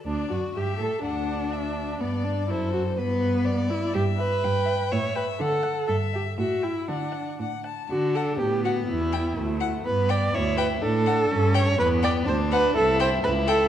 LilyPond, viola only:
\new Staff \with { instrumentName = "Viola" } { \time 2/4 \key g \major \tempo 4 = 123 d'8 fis'8 g'8 a'8 | d'2 | b8 d'8 e'8 fis'8 | b4. e'8 |
\key d \major g'8 b'4. | cis''8 b'8 a'4 | a'8 g'8 fis'8 e'8 | d'4 r4 |
fis'8 a'8 g'8 fis'8 | e'4. r8 | b'8 d''8 cis''8 b'8 | a'4. cis''8 |
\key a \dorian b'8 d''8 c''8 b'8 | a'8 c''8 b'8 a'8 | }